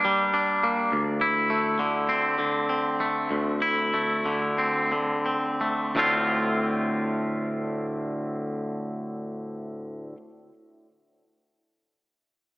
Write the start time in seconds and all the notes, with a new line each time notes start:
Already playing: A#3 D4 G4
0.05 G3
0.34 D4
0.63 A#3
0.92 D2
1.21 E4
1.50 A3
1.79 D3
2.09 C4
2.39 D3
2.69 C4
3.00 A3
3.31 D2
3.62 E4
3.94 A3
4.26 D3
4.58 C4
4.92 D3
5.26 C4
5.61 A3
5.95 D2 A2 D3 A3 C4 F4